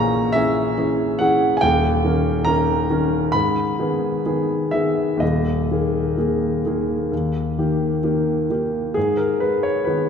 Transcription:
Already playing: A#1 A#2 E3 C#4 G#4 A#5 C#6 D#6
0.32 E3 C#4 G#4 E5
0.78 E3 C#4 G#4
1.19 E3 C#4 G#4 F#5
1.57 G#5
1.61 D#1 D#2 G5
2.04 D#3 C#4 A#4
2.45 D#3 C#4 A#4 A#5
2.90 D#3 C#4 A#4
3.32 G#2 B5
3.79 D#3 B3 G#4
4.26 D#3 B3 G#4
4.71 D#3 B3 G#4 E5
5.17 D#2 D#5
5.22 D#1
5.71 D#3 A#3 G#4
6.18 D#3 A#3 G#4
6.66 D#3 A#3 G#4
7.12 D#2
7.58 D#3 A#3 G4
8.03 D#3 A#3 G4
8.50 D#3 A#3 G4
8.94 G#2 G#4
9.17 A#4
9.40 G#3 B4
9.63 C#5
9.85 D#3 B3 G#4 B4

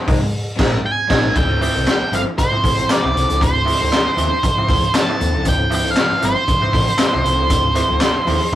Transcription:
0.06 C2 D#3 G#3 C4 D#4 A#4, kick, open hi-hat
0.20 G#3 C4, muted overdriven electric guitar stroke
0.56 A#1 D#3 G#3 C4 D#4 A#4, kick, snare, crash
0.86 G#5
1.08 A#1 D#3 G#3 C4 D#4 A#4, kick, snare, crash
1.35 D2 D3 F3 C4 D4 E4 F4 A4 G5, kick, closed hi-hat
1.60 E3 F3 C4 G5, muted overdriven electric guitar stroke, open hi-hat
1.74 C2 F3 C4 E4 A4
1.87 D3, snare, clap, closed hi-hat
2.00 muted overdriven electric guitar stroke, muted fingered electric bass stroke
2.12 G1 E3 F3 C4 E4 A4 F5, closed hi-hat
2.25 F3 C4, muted overdriven electric guitar stroke
2.38 D3 C5, muted overdriven electric guitar stroke, kick, closed hi-hat
2.52 E3 F3 C4, muted overdriven electric guitar stroke, muted fingered electric bass stroke
2.63 A1 F3 C4 E4 A4, kick, open hi-hat
2.77 F3 C4 E4 A4, closed hi-hat
2.90 D5, muted overdriven electric guitar stroke, snare, clap, closed hi-hat
3.03 C2 E3 F3 C4, muted overdriven electric guitar stroke
3.15 C2 F3 C4 E4 A4, closed hi-hat
3.29 C#2 D3 F3 C4 E4 A4, closed hi-hat
3.39 D2 D3 F3 C4 E4 A4 C5, kick, closed hi-hat
3.65 E3 F3 C4, muted overdriven electric guitar stroke, open hi-hat
3.80 D2 F3 C4 E4 A4
3.92 D3, snare, clap, closed hi-hat
4.06 muted fingered electric bass stroke, muted overdriven electric guitar stroke
4.17 D#2 E3 F3 C4 E4 A4, closed hi-hat
4.32 F3 C4, muted overdriven electric guitar stroke
4.43 D3, kick, closed hi-hat
4.57 E3 F3 C4, muted fingered electric bass stroke, muted overdriven electric guitar stroke
4.68 D2 F3 C4 E4 A4, kick, open hi-hat
4.83 muted overdriven electric guitar stroke, closed hi-hat
4.94 A5, muted overdriven electric guitar stroke, snare, clap, closed hi-hat
5.08 E3 F3 C4, muted overdriven electric guitar stroke
5.18 D#2 F3 C4 E4 A4, closed hi-hat
5.33 C#2 D3 F3 C4 E4 A4
5.45 D2 D3 F3 C4 E4 A4, kick, closed hi-hat
5.49 G5
5.70 E3 F3 C4, muted overdriven electric guitar stroke, open hi-hat
5.75 G5
5.84 C2 F3 C4 E4 A4
5.91 F5
5.96 D3, snare, clap, closed hi-hat
6.10 muted overdriven electric guitar stroke, muted fingered electric bass stroke
6.20 G1 E3 F3 C4 E4 A4, closed hi-hat
6.25 C5
6.34 F3 C4, muted overdriven electric guitar stroke
6.48 D3, kick, closed hi-hat
6.61 E3 F3 C4, muted overdriven electric guitar stroke, muted fingered electric bass stroke
6.72 A1 F3 C4 E4 A4, kick, open hi-hat
6.87 muted overdriven electric guitar stroke, closed hi-hat
6.97 muted overdriven electric guitar stroke, snare, clap, closed hi-hat
7.12 C2 E3 F3 C4, muted overdriven electric guitar stroke
7.23 C2 F3 C4 E4 A4, closed hi-hat
7.35 D3 F3 C4 E4 A4
7.40 C#2
7.48 D2 D3 F3 C4 E4 A4, kick, closed hi-hat
7.73 E3 F3 C4, muted overdriven electric guitar stroke, closed hi-hat
7.88 D2 F3 C4 E4 A4
8.01 D3, snare, clap, closed hi-hat
8.15 muted overdriven electric guitar stroke, muted fingered electric bass stroke
8.26 D#2 E3 F3 C4 E4 A4, open hi-hat
8.41 F3 C4, muted overdriven electric guitar stroke

